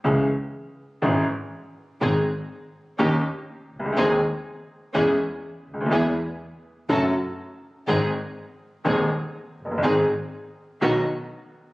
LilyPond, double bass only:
\new Staff \with { instrumentName = "Double bass" } { \clef bass \time 4/4 \key cis \minor \tempo 4 = 123 cis,8 r4. gis,,8 r4. | gis,,8 r4. dis,8 r4 cis,8 | dis,8 r4. e,8 r4 d,8 | e,8 r4. fis,,8 r4. |
gis,,8 r4. dis,8 r4 fis,,8 | gis,,8 r4. b,,8 r4. | }